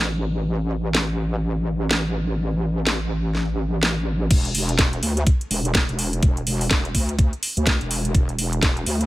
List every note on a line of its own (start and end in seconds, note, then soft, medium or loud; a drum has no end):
0.00 4.29 A1 medium
0.95 snare loud
1.91 snare loud
2.87 snare loud
3.35 snare soft
3.83 snare loud
4.31 4.53 E1 medium
4.31 kick loud
4.31 closed hi-hat medium
4.31 crash loud
4.45 closed hi-hat soft
4.55 5.01 E1 loud
4.55 open hi-hat loud
4.69 closed hi-hat medium
4.79 kick loud
4.79 snare loud
4.79 closed hi-hat medium
4.93 closed hi-hat soft
5.03 5.25 D2 medium
5.03 open hi-hat loud
5.17 closed hi-hat medium
5.27 kick loud
5.27 closed hi-hat medium
5.41 closed hi-hat soft
5.50 5.87 E1 loud
5.50 open hi-hat loud
5.65 closed hi-hat medium
5.75 kick loud
5.75 snare loud
5.75 closed hi-hat medium
5.89 6.21 E1 loud
5.89 closed hi-hat soft
5.99 open hi-hat loud
6.13 closed hi-hat medium
6.23 6.45 E1 medium
6.23 kick loud
6.23 closed hi-hat medium
6.37 closed hi-hat soft
6.47 6.69 E1 loud
6.47 open hi-hat loud
6.61 open hi-hat medium
6.71 6.93 E1 loud
6.71 kick loud
6.71 snare loud
6.71 closed hi-hat medium
6.85 closed hi-hat soft
6.95 7.31 D2 loud
6.95 kick medium
6.95 open hi-hat loud
7.09 closed hi-hat medium
7.19 kick loud
7.19 closed hi-hat medium
7.33 closed hi-hat soft
7.43 open hi-hat loud
7.57 7.79 D2 loud
7.57 closed hi-hat medium
7.67 kick loud
7.67 snare loud
7.67 closed hi-hat medium
7.81 8.13 E1 loud
7.81 closed hi-hat soft
7.91 open hi-hat loud
8.05 closed hi-hat medium
8.15 8.37 E1 loud
8.15 kick loud
8.15 closed hi-hat medium
8.29 closed hi-hat soft
8.38 8.85 E1 medium
8.38 open hi-hat loud
8.53 closed hi-hat medium
8.63 kick loud
8.63 snare loud
8.63 closed hi-hat medium
8.77 closed hi-hat soft
8.86 9.06 D2 medium
8.86 open hi-hat loud
9.01 closed hi-hat medium